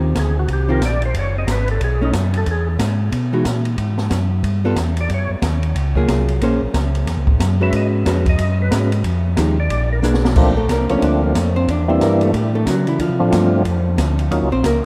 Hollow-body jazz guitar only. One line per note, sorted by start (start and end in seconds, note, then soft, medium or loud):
0.00 0.13 D#3 medium
0.00 0.13 C4 medium
0.00 0.13 F4 medium
0.00 0.13 G4 medium
0.68 0.80 D#3 medium
0.68 0.80 C4 medium
0.68 0.81 F4 medium
0.68 0.81 G4 medium
2.01 2.12 A3 medium
2.01 2.13 C#4 medium
2.01 2.13 D#4 medium
3.33 3.44 E3 medium
3.33 3.44 G#3 medium
3.33 3.44 D#4 medium
3.33 3.44 F#4 medium
4.65 4.76 G3 medium
4.65 4.76 B3 medium
4.65 4.76 F4 medium
4.65 4.76 A4 medium
5.96 6.39 F#3 medium
5.96 6.39 A#3 medium
5.96 6.39 F4 medium
5.96 6.40 G#4 medium
6.42 6.60 A#3 medium
6.42 6.60 C#4 medium
6.42 6.60 G#4 medium
6.42 6.61 C5 medium
7.60 8.04 G#3 medium
7.60 8.04 C#4 medium
7.60 8.04 F#4 medium
7.60 8.04 B4 medium
8.06 8.24 G#3 medium
8.06 8.24 C#4 medium
8.06 8.25 F#4 medium
8.06 8.25 B4 medium
8.72 8.90 G#3 medium
8.72 8.90 C#4 medium
8.72 8.90 F#4 medium
8.72 8.91 B4 medium
9.37 9.56 F3 medium
9.37 9.56 G#3 medium
9.37 9.56 D#4 medium
9.37 9.56 G4 medium
10.03 10.21 A#3 medium
10.03 10.22 D4 medium
10.03 10.22 G#4 medium
10.03 10.22 B4 medium
10.57 10.70 A3 medium
10.57 10.69 A4 medium
10.71 10.90 A#3 medium
10.71 10.90 A#4 medium
10.91 11.03 C#4 medium
10.91 11.03 C#5 medium
11.04 11.23 D4 medium
11.04 11.23 D5 medium
11.23 11.36 F3 soft
11.23 11.35 F4 soft
11.37 11.56 A3 medium
11.37 11.56 A4 medium
11.56 11.68 C4 medium
11.56 11.68 C5 medium
11.70 11.89 D4 medium
11.70 11.89 D5 medium
11.89 12.01 C4 medium
11.89 12.01 C5 medium
12.03 12.22 A#3 medium
12.03 12.22 A#4 medium
12.23 12.34 A3 medium
12.23 12.34 A4 medium
12.36 12.55 G3 soft
12.36 12.55 G4 medium
12.55 12.67 A3 medium
12.55 12.67 A4 medium
12.69 12.87 F#3 medium
12.69 12.87 F#4 medium
12.88 13.00 E3 medium
12.88 13.00 E4 medium
13.01 13.50 F3 medium
13.01 13.50 F4 medium
14.52 14.64 C4 medium
14.52 14.64 C5 loud
14.66 14.84 A#3 medium
14.66 14.84 A#4 medium